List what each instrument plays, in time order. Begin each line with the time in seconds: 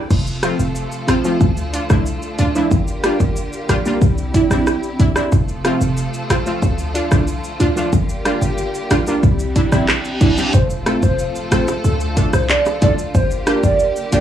0.10 808-style bass F1, string section C3 F3 A3 F4 A4, kick, crash, shaker
0.27 shaker
0.43 synth stab F3 A3 C4 F4, cross-stick, closed hi-hat, shaker
0.59 808-style bass F1, shaker
0.75 shaker
0.92 shaker
1.07 808-style bass A1, synth stab C4 F4, cross-stick, closed hi-hat, shaker
1.24 synth stab F3 A3 C4 F4, shaker
1.41 808-style bass D2, string section D3 A3, kick, shaker
1.57 shaker
1.73 synth stab D4 F4, closed hi-hat, shaker
1.89 808-style bass C2, synth stab F3 A3 D4 E4, kick, cross-stick, shaker
2.06 shaker
2.22 shaker
2.38 808-style bass D2, synth stab D4 F4, closed hi-hat, shaker
2.55 synth stab F3 A3 D4 E4, shaker
2.71 808-style bass G1, string section G3 A#3 G4, kick, shaker
2.87 shaker
3.03 synth stab G3 A#3 D4 F4, cross-stick, closed hi-hat, shaker
3.20 808-style bass G1, kick, shaker
3.36 shaker
3.53 shaker
3.69 808-style bass A#1, synth stab D4 F4, cross-stick, closed hi-hat, shaker
3.85 synth stab G3 A#3 D4 F4, shaker
4.02 808-style bass C2, string section C4 E4 G4, kick, shaker
4.18 shaker
4.34 synth stab D4 E4, kick, closed hi-hat, shaker
4.50 808-style bass A#1, synth stab G3 C4 D4 E4, cross-stick, shaker
4.67 cross-stick, shaker
4.83 shaker
4.99 808-style bass C2, synth stab D4 E4, kick, closed hi-hat, shaker
5.15 synth stab G3 C4 D4 E4, cross-stick, shaker
5.32 808-style bass F1, string section C3 F3 A3 F4 A4, kick, shaker
5.48 shaker
5.64 synth stab F3 A3 C4 F4, cross-stick, closed hi-hat, shaker
5.81 808-style bass F1, shaker
5.97 shaker
6.14 shaker
6.30 808-style bass A1, synth stab C4 F4, cross-stick, closed hi-hat, shaker
6.46 synth stab F3 A3 C4 F4, shaker
6.62 808-style bass D2, string section D3, kick, shaker
6.79 shaker
6.94 synth stab D4 F4, closed hi-hat, shaker
7.11 808-style bass C2, synth stab F3 A3 D4 F4, kick, cross-stick, shaker
7.28 shaker
7.44 shaker
7.60 808-style bass D2, synth stab D4 F4, closed hi-hat, shaker
7.76 synth stab F3 A3 D4 F4, shaker
7.93 808-style bass G1, string section G3 A#3 G4, kick, shaker
8.09 shaker
8.25 synth stab G3 A#3 D4 F4, cross-stick, closed hi-hat, shaker
8.42 808-style bass G1, shaker
8.58 shaker
8.74 shaker
8.91 808-style bass A#1, synth stab D4 F4, cross-stick, closed hi-hat, shaker
9.07 synth stab G3 A#3 D4 F4, shaker
9.23 808-style bass C2, string section D3 C4 E4 G4, kick, reverse cymbal, shaker
9.39 shaker
9.56 synth stab D4 E4, kick, closed hi-hat, shaker
9.72 808-style bass A#1, synth stab G3 C4 D4 E4, kick, cross-stick, shaker
9.88 cross-stick, clap, shaker
10.05 shaker
10.21 808-style bass C2, synth stab D4 E4, kick, closed hi-hat, shaker
10.37 synth stab G3 C4 D4 G4, shaker
10.54 808-style bass F1, string section C3 F3 A3 F4 A4, soft synth lead C5, kick, impact, shaker
10.70 shaker
10.86 synth stab A3 C4 F4 A4, soft synth lead A4, cross-stick, closed hi-hat, high bongo, shaker
11.03 808-style bass F1, soft synth lead C5, kick, shaker
11.19 shaker
11.35 shaker
11.51 808-style bass A1, synth stab A3 C4 F4 A4, soft synth lead C5, cross-stick, closed hi-hat, shaker
11.68 high bongo, shaker
11.84 808-style bass D2, string section D3 F3 F4, soft synth lead A4, shaker
12.00 shaker
12.16 synth stab A3 D4 F4 A4, kick, closed hi-hat, shaker
12.33 808-style bass C2, soft synth lead C5, cross-stick, shaker
12.49 soft synth lead D5, clap, high bongo, shaker
12.66 high bongo, shaker
12.81 808-style bass D2, synth stab A3 D4 F4 A4, soft synth lead D5, kick, closed hi-hat, low bongo, shaker
12.98 shaker
13.15 808-style bass G1, string section G3 A#3 G4, soft synth lead C5, kick, shaker
13.31 shaker
13.47 synth stab A#3 D4 F4 G4, soft synth lead A#4, cross-stick, closed hi-hat, high bongo, shaker
13.64 808-style bass G1, soft synth lead D5, kick, shaker
13.79 shaker
13.96 shaker
14.12 808-style bass A#1, synth stab A#3 D4 F4 G4, soft synth lead D5, closed hi-hat, shaker